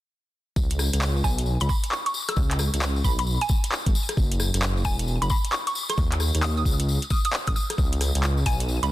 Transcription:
0.56 0.90 C#2 medium
0.56 kick loud
0.56 tambourine soft
0.70 closed hi-hat soft
0.70 tambourine soft
0.79 cross-stick medium
0.79 tambourine medium
0.93 1.22 C#2 medium
0.93 cross-stick soft
0.93 closed hi-hat medium
0.93 tambourine soft
1.02 clap loud
1.02 tambourine soft
1.16 tambourine soft
1.24 1.57 B1 medium
1.24 1.39 G#5 medium
1.24 kick medium
1.24 tambourine medium
1.38 closed hi-hat medium
1.38 tambourine soft
1.46 tambourine soft
1.60 1.68 C#2 medium
1.60 1.66 B5 medium
1.60 closed hi-hat soft
1.60 tambourine soft
1.69 1.78 B5 medium
1.69 kick loud
1.69 tambourine medium
1.84 closed hi-hat medium
1.84 tambourine soft
1.92 2.01 C#6 medium
1.92 clap loud
1.92 tambourine soft
2.06 2.11 C#6 medium
2.06 closed hi-hat soft
2.06 tambourine soft
2.14 tambourine medium
2.28 2.38 E6 medium
2.28 cross-stick medium
2.28 closed hi-hat medium
2.28 tambourine soft
2.36 2.70 C#2 medium
2.36 kick loud
2.36 tambourine soft
2.51 clap medium
2.51 closed hi-hat soft
2.51 tambourine soft
2.59 cross-stick medium
2.59 tambourine medium
2.74 3.02 C#2 medium
2.74 cross-stick soft
2.74 closed hi-hat medium
2.74 tambourine soft
2.81 clap loud
2.81 tambourine soft
2.96 tambourine soft
3.04 3.38 B1 medium
3.04 3.14 B5 medium
3.04 kick medium
3.04 tambourine medium
3.19 3.24 B5 medium
3.19 closed hi-hat medium
3.19 tambourine soft
3.27 tambourine medium
3.41 3.87 G#5 medium
3.41 closed hi-hat soft
3.41 tambourine soft
3.49 kick loud
3.49 tambourine medium
3.64 closed hi-hat medium
3.64 tambourine soft
3.72 clap loud
3.72 tambourine soft
3.86 3.93 G#1 medium
3.86 kick loud
3.86 closed hi-hat soft
3.86 tambourine soft
3.95 tambourine medium
4.09 cross-stick medium
4.09 closed hi-hat medium
4.09 tambourine soft
4.17 4.50 F#1 medium
4.17 kick loud
4.17 tambourine soft
4.32 closed hi-hat soft
4.32 tambourine soft
4.40 cross-stick medium
4.40 tambourine loud
4.54 4.83 F#1 medium
4.54 cross-stick soft
4.54 closed hi-hat medium
4.54 tambourine soft
4.62 clap loud
4.62 tambourine soft
4.77 tambourine soft
4.85 5.00 G#5 medium
4.85 kick medium
4.85 tambourine medium
4.99 closed hi-hat medium
4.99 tambourine soft
5.08 tambourine medium
5.22 5.29 F#1 medium
5.22 5.27 B5 medium
5.22 closed hi-hat soft
5.22 tambourine soft
5.30 5.39 B5 medium
5.30 kick loud
5.30 tambourine medium
5.45 closed hi-hat medium
5.45 tambourine soft
5.52 5.62 C#6 medium
5.52 clap loud
5.52 tambourine soft
5.67 5.72 C#6 medium
5.67 closed hi-hat soft
5.67 tambourine soft
5.75 tambourine medium
5.89 5.98 C#6 medium
5.89 cross-stick medium
5.89 closed hi-hat medium
5.89 tambourine soft
5.98 6.31 D#2 medium
5.98 kick loud
5.98 tambourine soft
6.12 clap medium
6.12 closed hi-hat soft
6.12 tambourine soft
6.20 cross-stick medium
6.20 tambourine medium
6.35 6.63 D#2 medium
6.35 cross-stick soft
6.35 closed hi-hat medium
6.35 tambourine soft
6.42 6.52 D#6 medium
6.42 clap loud
6.42 tambourine medium
6.57 6.63 D#6 medium
6.57 tambourine soft
6.65 6.99 C#2 loud
6.65 kick medium
6.65 tambourine medium
6.80 closed hi-hat medium
6.80 tambourine soft
6.88 tambourine medium
7.02 closed hi-hat soft
7.02 tambourine soft
7.10 7.20 D#6 medium
7.10 kick loud
7.10 tambourine medium
7.25 7.30 D#6 medium
7.25 closed hi-hat medium
7.25 tambourine soft
7.33 clap loud
7.33 tambourine soft
7.47 7.54 A1 medium
7.47 7.53 D#6 medium
7.47 kick loud
7.47 closed hi-hat soft
7.47 tambourine soft
7.56 7.65 D#6 medium
7.56 tambourine medium
7.70 cross-stick medium
7.70 closed hi-hat medium
7.70 tambourine soft
7.78 8.11 C#2 medium
7.78 kick loud
7.78 tambourine medium
7.92 closed hi-hat soft
7.92 tambourine soft
8.01 cross-stick medium
8.01 open hi-hat medium
8.01 tambourine medium
8.15 8.44 C#2 medium
8.15 cross-stick soft
8.15 closed hi-hat medium
8.15 tambourine soft
8.23 clap loud
8.23 tambourine medium
8.37 tambourine soft
8.46 8.61 G#5 medium
8.46 kick medium
8.46 open hi-hat loud
8.46 tambourine medium
8.60 closed hi-hat medium
8.60 tambourine soft
8.68 tambourine soft
8.83 8.90 C#2 medium
8.83 8.88 B5 medium
8.83 closed hi-hat soft
8.83 tambourine soft

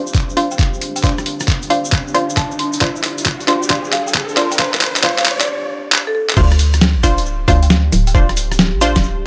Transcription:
0.00 5.48 D4 medium
0.00 5.48 G4 medium
0.00 5.48 C5 medium
0.00 5.48 F5 medium
0.00 riser medium
0.07 shaker medium
0.15 kick medium
0.15 clap soft
0.15 closed hi-hat medium
0.15 shaker medium
0.30 shaker soft
0.37 0.46 D4 medium
0.37 0.46 F4 medium
0.37 0.46 C5 loud
0.37 0.49 F5 medium
0.37 open hi-hat loud
0.51 0.59 G5 medium
0.51 shaker medium
0.59 kick medium
0.59 clap medium
0.59 closed hi-hat medium
0.59 shaker medium
0.74 shaker soft
0.81 open hi-hat loud
0.96 1.04 G5 medium
0.96 closed hi-hat medium
0.96 shaker medium
1.03 1.13 D4 medium
1.03 1.13 F4 medium
1.03 1.13 C5 medium
1.03 kick medium
1.03 clap medium
1.03 closed hi-hat medium
1.03 shaker medium
1.18 cross-stick medium
1.18 shaker soft
1.26 open hi-hat loud
1.40 cross-stick medium
1.40 open hi-hat medium
1.40 shaker medium
1.48 kick medium
1.48 clap medium
1.48 closed hi-hat medium
1.48 shaker medium
1.62 closed hi-hat soft
1.62 shaker soft
1.70 1.85 D4 medium
1.70 1.85 F4 medium
1.70 1.85 C5 loud
1.70 1.85 F5 medium
1.70 open hi-hat loud
1.85 shaker medium
1.92 kick medium
1.92 clap medium
1.92 closed hi-hat medium
2.08 shaker soft
2.14 2.24 D4 medium
2.14 2.24 F4 medium
2.14 2.24 C5 loud
2.14 2.29 F5 medium
2.14 open hi-hat loud
2.30 shaker medium
2.37 2.52 A5 medium
2.37 kick medium
2.37 clap medium
2.37 closed hi-hat medium
2.37 shaker medium
2.51 shaker soft
2.59 3.04 C6 medium
2.59 open hi-hat loud
2.73 closed hi-hat medium
2.73 shaker medium
2.81 2.91 D4 medium
2.81 2.91 F4 medium
2.81 2.91 C5 medium
2.81 kick medium
2.81 clap medium
2.81 closed hi-hat medium
2.81 shaker medium
2.96 shaker soft
3.03 clap medium
3.03 open hi-hat loud
3.18 closed hi-hat medium
3.18 shaker medium
3.25 kick medium
3.25 clap medium
3.25 closed hi-hat medium
3.25 shaker medium
3.40 closed hi-hat soft
3.40 shaker soft
3.48 3.63 D4 medium
3.48 3.63 F4 medium
3.48 3.63 C5 loud
3.48 clap medium
3.48 open hi-hat loud
3.63 shaker medium
3.70 3.80 D4 medium
3.70 3.80 F4 medium
3.70 3.80 C5 medium
3.70 kick loud
3.70 clap medium
3.70 closed hi-hat medium
3.70 shaker medium
3.84 shaker soft
3.92 4.04 F5 medium
3.92 clap medium
3.92 open hi-hat loud
4.07 4.15 G5 medium
4.07 shaker medium
4.15 kick medium
4.15 clap medium
4.15 closed hi-hat medium
4.15 shaker medium
4.29 shaker soft
4.37 4.52 D4 medium
4.37 4.52 F4 medium
4.37 4.52 C5 loud
4.37 clap medium
4.37 open hi-hat loud
4.52 4.59 G5 medium
4.52 closed hi-hat medium
4.52 shaker medium
4.59 4.69 D4 medium
4.59 4.69 F4 medium
4.59 4.69 C5 medium
4.59 kick medium
4.59 clap medium
4.59 closed hi-hat medium
4.59 shaker medium
4.74 clap medium
4.74 shaker soft
4.81 clap medium
4.81 open hi-hat loud
4.95 clap medium
4.95 open hi-hat medium
4.95 shaker medium
5.03 5.13 D4 medium
5.03 5.13 F4 medium
5.03 5.13 C5 medium
5.03 5.13 F5 medium
5.03 kick loud
5.03 clap loud
5.03 closed hi-hat medium
5.03 shaker medium
5.18 5.23 F5 medium
5.18 clap medium
5.18 closed hi-hat soft
5.18 shaker soft
5.26 clap loud
5.26 open hi-hat loud
5.40 5.48 D5 medium
5.40 clap medium
5.40 shaker medium
5.92 clap loud
6.07 6.12 A4 medium
6.15 6.24 A4 medium
6.29 clap medium
6.36 6.98 D2 loud
6.36 6.46 D4 medium
6.36 6.46 F4 medium
6.36 9.27 G4 medium
6.36 6.46 C5 medium
6.36 kick loud
6.36 crash loud
6.36 shaker soft
6.52 cross-stick medium
6.52 closed hi-hat soft
6.59 open hi-hat loud
6.59 shaker loud
6.73 cross-stick medium
6.73 closed hi-hat medium
6.73 shaker medium
6.81 snare loud
6.81 shaker soft
6.96 7.20 A1 loud
7.03 7.18 D4 medium
7.03 7.18 F4 medium
7.03 7.18 C5 loud
7.03 kick medium
7.03 open hi-hat loud
7.03 shaker medium
7.18 7.46 D1 medium
7.18 closed hi-hat medium
7.18 shaker soft
7.26 shaker soft
7.48 7.90 D2 loud
7.48 7.57 D4 loud
7.48 7.58 F4 medium
7.48 7.58 C5 loud
7.48 7.60 F5 medium
7.48 kick loud
7.48 open hi-hat loud
7.48 shaker loud
7.63 7.70 G5 medium
7.63 closed hi-hat medium
7.63 shaker medium
7.70 snare loud
7.70 shaker soft
7.92 8.75 D1 medium
7.92 open hi-hat loud
7.92 shaker medium
8.07 8.15 G5 medium
8.07 closed hi-hat medium
8.07 shaker soft
8.15 8.24 D4 medium
8.15 8.24 F4 medium
8.15 8.24 C5 medium
8.15 kick loud
8.15 shaker soft
8.29 cross-stick medium
8.29 closed hi-hat soft
8.37 open hi-hat loud
8.37 shaker loud
8.52 cross-stick medium
8.52 open hi-hat medium
8.52 shaker medium
8.59 snare loud
8.59 shaker soft
8.74 8.98 A1 medium
8.81 8.96 D4 medium
8.81 8.96 F4 medium
8.81 8.96 C5 loud
8.81 8.96 F5 medium
8.81 open hi-hat loud
8.81 shaker loud
8.96 9.24 D1 medium
8.96 kick medium
8.96 snare medium
8.96 closed hi-hat medium
8.96 shaker medium
9.03 shaker soft

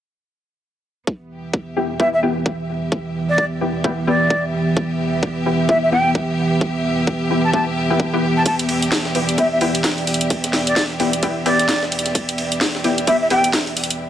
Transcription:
1.07 14.10 E3 medium
1.07 14.00 B3 medium
1.07 14.10 B3 medium
1.07 14.10 G4 medium
1.07 8.42 E5 medium
1.07 kick loud
1.34 14.00 G4 medium
1.43 14.00 E5 medium
1.54 kick medium
1.77 1.89 B3 medium
1.77 1.89 E4 medium
1.77 1.89 G4 medium
2.00 2.18 B3 medium
2.00 2.18 E4 medium
2.00 2.18 G4 medium
2.00 2.08 E5 medium
2.00 kick loud
2.13 2.19 E5 medium
2.23 2.35 B3 medium
2.23 2.35 E4 medium
2.23 2.35 G4 medium
2.46 kick loud
2.92 kick loud
3.29 3.44 D5 medium
3.38 kick loud
3.61 3.74 B3 medium
3.61 3.74 E4 medium
3.61 3.74 G4 medium
3.84 4.02 B3 medium
3.84 4.02 E4 medium
3.84 4.02 G4 loud
3.84 kick loud
4.07 4.20 B3 medium
4.07 4.20 E4 medium
4.07 4.20 G4 medium
4.07 4.44 D5 medium
4.30 kick medium
4.77 kick loud
5.23 kick loud
5.46 5.58 B3 medium
5.46 5.58 E4 medium
5.46 5.58 G4 medium
5.69 5.87 B3 medium
5.69 5.87 E4 medium
5.69 5.87 G4 medium
5.69 5.78 E5 medium
5.69 kick loud
5.82 5.89 E5 medium
5.92 6.04 B3 medium
5.92 6.04 E4 medium
5.92 6.04 G4 medium
5.92 6.10 G5 medium
6.15 kick loud
6.61 kick loud
7.07 kick loud
7.30 7.43 B3 medium
7.30 7.43 E4 medium
7.30 7.43 G4 medium
7.44 7.50 A5 medium
7.53 7.71 B3 medium
7.53 7.71 E4 medium
7.53 7.71 G4 loud
7.53 7.62 A5 medium
7.53 kick loud
7.90 7.99 B3 medium
7.90 7.99 E4 medium
7.90 7.99 G4 medium
8.00 kick loud
8.13 8.22 B3 loud
8.13 8.22 E4 medium
8.13 8.22 G4 loud
8.36 8.42 A5 medium
8.46 14.10 D5 medium
8.46 8.55 A5 medium
8.46 kick loud
8.46 closed hi-hat medium
8.46 ride medium
8.59 closed hi-hat medium
8.59 ride soft
8.69 ride medium
8.82 closed hi-hat soft
8.92 kick loud
8.92 snare loud
8.92 ride medium
9.05 snare medium
9.15 9.28 B3 medium
9.15 9.28 E4 medium
9.15 9.27 G4 medium
9.15 ride medium
9.29 closed hi-hat soft
9.38 9.56 B3 medium
9.38 9.56 E4 medium
9.38 9.56 G4 loud
9.38 9.47 E5 medium
9.38 kick loud
9.38 closed hi-hat medium
9.38 ride medium
9.52 9.58 E5 medium
9.61 9.74 B3 medium
9.61 9.74 E4 medium
9.61 9.74 G4 loud
9.61 ride medium
9.75 closed hi-hat soft
9.75 ride soft
9.84 kick medium
9.84 snare loud
9.84 closed hi-hat medium
9.84 ride medium
9.98 ride soft
10.07 closed hi-hat soft
10.07 open hi-hat medium
10.14 closed hi-hat medium
10.21 closed hi-hat soft
10.30 kick loud
10.30 closed hi-hat medium
10.30 ride medium
10.44 snare soft
10.44 closed hi-hat medium
10.53 snare medium
10.53 ride medium
10.67 10.83 D5 medium
10.67 closed hi-hat soft
10.76 kick loud
10.76 snare loud
10.76 ride medium
11.00 11.12 B3 medium
11.00 11.12 E4 medium
11.00 11.12 G4 medium
11.00 snare soft
11.00 ride medium
11.13 closed hi-hat soft
11.23 11.41 B3 medium
11.23 11.41 E4 medium
11.23 11.41 G4 loud
11.23 kick loud
11.23 closed hi-hat medium
11.23 ride medium
11.46 11.58 B3 medium
11.46 11.58 E4 medium
11.46 11.58 G4 loud
11.46 11.83 D5 medium
11.46 snare medium
11.46 ride medium
11.59 snare soft
11.59 closed hi-hat soft
11.69 kick loud
11.69 snare loud
11.69 closed hi-hat medium
11.69 ride medium
11.83 snare medium
11.92 closed hi-hat soft
11.92 ride medium
11.99 closed hi-hat medium
12.06 snare soft
12.06 closed hi-hat soft
12.15 kick loud
12.15 closed hi-hat medium
12.15 ride medium
12.29 closed hi-hat medium
12.29 ride soft
12.38 ride medium
12.52 closed hi-hat medium
12.61 kick loud
12.61 snare loud
12.61 ride medium
12.75 snare medium
12.84 12.97 B3 medium
12.84 12.97 E4 medium
12.84 12.97 G4 medium
12.84 snare soft
12.84 ride medium
12.98 closed hi-hat soft
13.07 13.25 B3 medium
13.07 13.25 E4 medium
13.07 13.25 G4 loud
13.07 13.16 E5 medium
13.07 kick loud
13.07 closed hi-hat medium
13.07 ride medium
13.21 13.27 E5 medium
13.30 13.43 B3 medium
13.30 13.43 E4 medium
13.30 13.43 G4 loud
13.30 13.48 G5 medium
13.30 ride medium
13.44 closed hi-hat medium
13.44 ride soft
13.53 kick medium
13.53 snare loud
13.53 closed hi-hat medium
13.53 ride medium
13.67 ride soft
13.77 closed hi-hat soft
13.77 open hi-hat medium
13.84 closed hi-hat medium
13.90 closed hi-hat soft

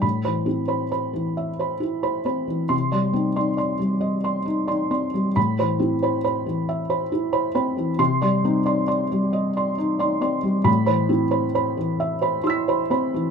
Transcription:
0.02 2.68 A2 soft
0.02 0.23 B5 medium
0.25 0.61 E3 soft
0.25 0.45 C5 soft
0.25 0.45 B5 soft
0.46 0.83 C4 soft
0.46 0.83 E4 soft
0.68 0.89 C5 soft
0.68 0.89 B5 soft
0.92 1.12 C5 soft
0.92 1.12 B5 soft
1.13 1.50 E3 soft
1.37 1.73 E5 soft
1.59 1.80 C5 soft
1.59 1.81 B5 soft
1.80 2.17 E4 soft
2.03 2.24 C5 soft
2.03 2.24 B5 soft
2.25 2.62 C4 soft
2.25 2.47 C5 soft
2.25 2.47 B5 soft
2.48 2.71 E3 soft
2.69 5.31 C3 medium
2.69 2.91 C6 medium
2.92 3.28 G3 soft
2.92 3.13 D5 soft
2.92 3.13 C6 soft
3.13 3.50 C4 soft
3.13 3.35 D#4 soft
3.36 3.72 D#4 soft
3.36 3.56 D5 soft
3.36 3.57 C6 soft
3.57 3.78 D5 soft
3.57 3.79 C6 soft
3.79 4.15 G3 soft
4.01 4.37 D#5 medium
4.24 4.44 D5 soft
4.24 4.45 C6 soft
4.45 4.66 D#4 soft
4.67 5.04 D#4 soft
4.67 4.88 D5 soft
4.67 4.89 C6 soft
4.90 5.27 C4 soft
4.90 5.11 D5 soft
4.90 5.11 C6 soft
5.14 5.37 G3 soft
5.36 7.95 A2 medium
5.36 5.58 B5 medium
5.59 5.94 E3 soft
5.59 5.79 C5 soft
5.59 5.79 B5 soft
5.79 6.15 C4 soft
5.79 6.15 E4 soft
6.03 6.22 C5 soft
6.03 6.23 B5 soft
6.24 6.44 C5 soft
6.24 6.44 B5 soft
6.46 6.81 E3 soft
6.69 7.03 E5 soft
6.90 7.09 C5 soft
6.90 7.09 B5 soft
7.12 7.46 E4 medium
7.33 7.53 C5 soft
7.33 7.53 B5 medium
7.55 7.90 C4 soft
7.55 7.75 C5 soft
7.55 7.75 B5 soft
7.77 8.00 E3 soft
7.99 10.63 C3 medium
7.99 8.21 C6 medium
8.22 8.58 G3 soft
8.22 8.42 D5 soft
8.22 8.42 C6 medium
8.44 8.80 C4 soft
8.44 8.64 D#4 medium
8.66 9.02 D#4 soft
8.66 8.86 D5 soft
8.66 8.86 C6 soft
8.88 9.08 D5 soft
8.88 9.09 C6 medium
9.11 9.47 G3 medium
9.33 9.69 D#5 medium
9.57 9.77 D5 soft
9.57 9.77 C6 medium
9.78 9.98 D#4 soft
9.99 10.36 D#4 medium
9.99 10.20 D5 medium
9.99 10.20 C6 medium
10.21 10.57 C4 soft
10.21 10.42 D5 soft
10.21 10.42 C6 soft
10.43 10.66 G3 medium
10.64 13.30 A2 medium
10.64 10.85 B5 medium
10.86 11.23 E3 medium
10.86 11.08 C5 medium
10.86 11.07 B5 medium
11.09 11.46 C4 soft
11.09 11.46 E4 medium
11.31 11.52 C5 soft
11.31 11.52 B5 medium
11.55 11.75 C5 medium
11.55 11.76 B5 medium
11.77 12.13 E3 soft
12.00 12.36 E5 medium
12.22 12.42 C5 soft
12.22 12.43 B5 soft
12.44 12.81 E4 medium
12.44 13.31 C6 soft
12.44 13.31 E6 soft
12.50 13.31 B6 soft
12.68 12.88 C5 medium
12.68 12.89 B5 medium
12.90 13.27 C4 soft
12.90 13.11 C5 soft
12.90 13.11 B5 soft
13.14 13.31 E3 soft

